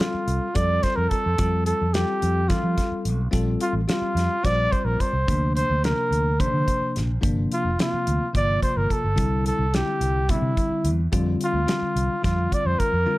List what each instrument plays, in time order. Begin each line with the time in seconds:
0.00 tine electric piano G3 C4 F4 A4, trumpet F4, snare, closed hi-hat
0.14 muted fingered electric bass stroke
0.28 fingered electric bass C2, closed hi-hat
0.54 fingered electric bass F2, tine electric piano G3 C4 F4 A4, trumpet D5, kick, closed hi-hat
0.83 trumpet C5, kick, snare, closed hi-hat
0.96 fingered electric bass F2, trumpet A#4
1.09 trumpet A4, muted fingered electric bass stroke, kick, closed hi-hat
1.26 fingered electric bass F2
1.38 fingered electric bass F2, tine electric piano G3 C4 F4 A4, kick, closed hi-hat
1.66 trumpet A4, closed hi-hat
1.82 fingered electric bass F2
1.93 tine electric piano G3 C4 F4 A4, trumpet G4, snare, closed hi-hat
2.22 fingered electric bass F2, closed hi-hat
2.48 fingered electric bass F3, tine electric piano G3 C4 F4 A4, trumpet F4, kick, snare, closed hi-hat
2.63 fingered electric bass F3
2.78 kick, snare, closed hi-hat
2.92 muted fingered electric bass stroke
3.05 fingered electric bass B1, closed hi-hat
3.31 fingered electric bass A#1, tine electric piano G3 C4 F4 A4, kick, closed hi-hat
3.61 trumpet F4, closed hi-hat
3.73 fingered electric bass A1
3.87 tine electric piano G3 C4 F4 G4, trumpet F4, snare, closed hi-hat
4.02 muted fingered electric bass stroke
4.15 fingered electric bass F2, snare, closed hi-hat
4.43 fingered electric bass A#1, tine electric piano G3 C4 F4 C5, trumpet D5, kick, snare, closed hi-hat
4.72 trumpet C5, kick, closed hi-hat
4.85 fingered electric bass A#1, trumpet A#4
5.00 trumpet C5, muted fingered electric bass stroke, kick, closed hi-hat
5.13 fingered electric bass C2
5.27 fingered electric bass D2, tine electric piano C3 F3 A#3 D4, kick, closed hi-hat
5.56 trumpet C5, closed hi-hat
5.70 fingered electric bass D2
5.83 tine electric piano C3 F3 A#3 D4, trumpet A#4, snare, closed hi-hat
6.11 fingered electric bass D2, closed hi-hat
6.40 tine electric piano C3 F3 A#3 D4, fingered electric bass D3, trumpet C5, kick, closed hi-hat
6.54 fingered electric bass D3
6.68 kick, closed hi-hat
6.82 muted fingered electric bass stroke
6.96 fingered electric bass A#1, snare, closed hi-hat
7.21 fingered electric bass G1, tine electric piano C3 F3 A#3 D4, kick, closed hi-hat
7.52 trumpet F4, closed hi-hat
7.65 fingered electric bass F1
7.79 tine electric piano C3 F3 A#3 C4, trumpet F4, snare, closed hi-hat
7.93 muted fingered electric bass stroke
8.07 fingered electric bass D2, closed hi-hat
8.33 fingered electric bass G1, tine electric piano C3 F3 A#3 F4, trumpet D5, kick, closed hi-hat
8.62 trumpet C5, kick, closed hi-hat
8.77 fingered electric bass G1, trumpet A#4
8.90 trumpet A4, muted fingered electric bass stroke, kick, closed hi-hat
9.04 fingered electric bass G1
9.16 fingered electric bass C2, tine electric piano D3 G3 C4 E4, kick, closed hi-hat
9.46 trumpet A4, closed hi-hat
9.59 fingered electric bass C2
9.74 tine electric piano D3 G3 C4 E4, trumpet G4, snare, closed hi-hat
10.01 fingered electric bass C2, closed hi-hat
10.28 fingered electric bass C3, tine electric piano D3 G3 C4 E4, trumpet E4, kick, closed hi-hat
10.42 fingered electric bass C3
10.57 kick, closed hi-hat
10.70 muted fingered electric bass stroke
10.84 fingered electric bass E2, closed hi-hat
11.12 fingered electric bass F2, tine electric piano D3 G3 C4 F4, kick, closed hi-hat
11.41 trumpet F4, closed hi-hat
11.53 fingered electric bass D2
11.66 tine electric piano D3 G3 C4 F4, snare, closed hi-hat
11.82 muted fingered electric bass stroke
11.96 fingered electric bass C2, closed hi-hat
12.22 fingered electric bass F2, tine electric piano D3 G3 C4 F4, trumpet F4, kick, snare, closed hi-hat
12.52 trumpet D5, kick, closed hi-hat
12.65 fingered electric bass F2, trumpet C5
12.79 trumpet A#4, muted fingered electric bass stroke, kick, closed hi-hat
12.93 fingered electric bass F2
13.06 tine electric piano D3 G3 C4 F4